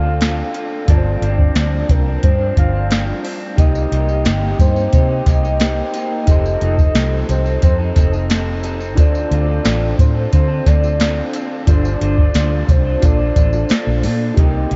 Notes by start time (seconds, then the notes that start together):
Already playing: D2 D4 F4 A4 C5 F5
0.03 C4 F4 A4
0.20 D3 C4 F4 A4, snare, closed hi-hat
0.53 D3 C4 F4 A4, closed hi-hat
0.85 G1 G2 F3 C4 D4 F4 A5, kick, closed hi-hat
0.90 A#4 D5
0.97 C5
1.21 G1 G2 F3 C4 D4, closed hi-hat
1.38 F3 C4 D4, kick
1.55 D2 G2 F3 C4 D4, snare, closed hi-hat
1.89 C2 A#4, kick, closed hi-hat
2.06 F3 C4 D4
2.22 G2 F3 C4 D4 C5, kick, closed hi-hat
2.39 F3 C4 D4
2.56 G1 G2 F3 C4 D4 F5, kick, closed hi-hat
2.72 F3 C4 D4
2.89 G2 F3 C4 D4, snare, closed hi-hat
3.23 G2 F3 C4 D4, open hi-hat
3.56 C2 C3 A#3 D#4 G4 A#4 D#5, kick, closed hi-hat, tambourine
3.61 D#5
3.75 tambourine
3.91 C2 C3 A#3 D#4 G4, closed hi-hat
4.08 A#3 D#4 G4, tambourine
4.24 G1 C3 A#3 D#4 G4, snare, closed hi-hat, tambourine
4.59 G2 C5, kick, closed hi-hat, tambourine
4.75 A#3 D#4 G4, tambourine
4.92 C3 A#3 D#4 G4 C5, kick, closed hi-hat, tambourine
5.09 A#3 D#4 G4
5.26 C2 C3 A#3 D#4 G4 D#5, kick, snare, closed hi-hat, tambourine
5.43 A#3 D#4 G4, tambourine
5.60 C3 A#3 D#4 G4 A#4 D#5, snare, closed hi-hat, tambourine
5.94 C3 A#3 D#4 G4, closed hi-hat, tambourine
6.26 F1 F3 C4 D#4 G4 A4 D#5, kick, closed hi-hat, tambourine
6.31 C5
6.46 tambourine
6.61 F1 F3 C4 D#4 A4, closed hi-hat
6.77 C4 D#4 A4, kick, tambourine
6.95 C2 F3 C4 D#4 A4, snare, closed hi-hat, tambourine
7.29 C2 C5, closed hi-hat, tambourine
7.45 C4 D#4 A4, tambourine
7.62 F2 F3 C4 D#4 A4 C5, kick, closed hi-hat, tambourine
7.78 C4 D#4 A4
7.94 F1 F3 C4 D#4 A4 D#5, kick, snare, closed hi-hat, tambourine
8.12 C4 D#4 A4, tambourine
8.29 F3 C4 D#4 A4, snare, closed hi-hat, tambourine
8.63 F3 C4 D#4 A4, closed hi-hat, tambourine
8.79 C4 D#4 A4, tambourine
8.95 D2 D3 C4 D4 F4 A4, kick, closed hi-hat, tambourine
8.99 C5 D5
9.15 tambourine
9.30 D2 D3 C4 F4 A4, closed hi-hat
9.47 C4 F4 A4
9.64 A1 D3 C4 F4 A4, snare, closed hi-hat, tambourine
9.99 A2 C5, kick, closed hi-hat, tambourine
10.15 C4 F4 A4
10.31 D3 C4 F4 A4 C5, kick, closed hi-hat, tambourine
10.49 C4 F4 A4
10.65 D2 D3 C4 F4 A4 D5, kick, snare, closed hi-hat, tambourine
10.83 C4 F4 A4, tambourine
10.99 D3 C4 F4 A4, snare, closed hi-hat, tambourine
11.33 D3 C4 F4 A4, closed hi-hat, tambourine
11.66 G1 G3 D4 F4 A4 C5 D5, kick, closed hi-hat, tambourine
11.71 C5
11.85 tambourine
12.00 G1 G3 D4 F4 C5, closed hi-hat
12.18 D4 F4 C5, kick
12.34 D2 G3 D4 F4 C5, snare, closed hi-hat, tambourine
12.68 C2 C5, kick, closed hi-hat, tambourine
12.85 D4 F4 C5
13.00 A#1 A#3 D4 F4 A4 D5, kick, closed hi-hat, tambourine
13.05 A4 C5
13.19 D4 F4 A4
13.36 A1 A#3 D4 F4 A4, kick, closed hi-hat, tambourine
13.53 D4 F4 A4, tambourine
13.69 A#3 D4 F4 A4, snare, closed hi-hat, tambourine
13.87 A#1
14.03 A#2 A#3 D4 F4 A4, open hi-hat, tambourine
14.34 C2 C3 D#4 G4 A#4, kick, closed hi-hat
14.38 A#3 D#4 G4 D#5
14.71 C2 C3 A#3 D#4, closed hi-hat